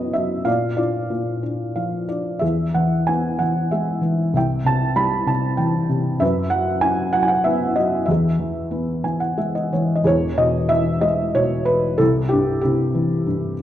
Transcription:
felt piano
Already playing: F#2 F#3 B3 C#4 C#5 D#5
0.13 F#3 E5
0.45 A#2 D5 F5
0.77 D4 F4 D5
1.10 A#2
1.43 D4
1.76 F3 F5
2.09 D4 D5
2.39 E2 G#4 E5
2.74 E3 F#5
3.07 B3 G#5
3.39 E3 F#5
3.71 G#3 E5
4.01 E3
4.34 C2 E5 G5
4.65 C3 A5
4.96 G3 B5
5.26 C3 A5
5.57 E3 G5
5.89 C3
6.20 F#2 B4 E5
6.50 F#3 F#5
6.81 C#4 G#5
7.13 F#3 F#5
7.23 G#5
7.28 F#5
7.44 B3 E5
7.76 F#3 D#5
8.06 E2 E5
8.11 G#4
8.39 E3
8.71 B3
9.04 E3 G#5
9.20 F#5
9.37 G#3 E5
9.55 D#5
9.73 E3 C#5
9.96 D#5
10.04 E1 E2 G#4 C#5
10.37 B2 D#5
10.69 E3 E5
11.01 G#3 D#5
11.35 B2 C#5
11.65 B4
11.98 C2 E4 A4
12.29 G2 G4
12.61 C3 E4 G4
12.95 E3
13.27 G2

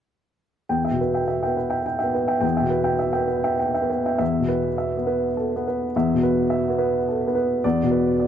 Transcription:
upright piano
0.69 E2 G5
0.85 E5 G5
0.91 B2
1.01 B4
1.14 E5 G5
1.28 E5
1.43 B3 E5 G5
1.57 B4
1.70 E5 G5
1.86 G5
1.99 E5 G5
2.04 B3
2.14 B4
2.28 E5 G5
2.40 E2 G5
2.57 E5 G5
2.61 B2
2.70 B4
2.84 E5 G5
2.99 E5
3.13 E5 G5
3.17 B3
3.28 B4
3.44 E5 G5
3.59 G5
3.74 E5 G5
3.82 B3
3.90 B4
4.06 E5 G5
4.18 E2 E5
4.40 B2
4.49 B4
4.78 E5
4.97 B3
5.07 B4
5.37 A4
5.56 B3
5.68 B4
5.96 E2 E5
6.14 B2
6.23 B4
6.50 E5
6.70 B3
6.78 B4
7.09 A4
7.27 B3
7.35 B4
7.64 E2 D5
7.83 B2
7.91 B4
8.20 D5

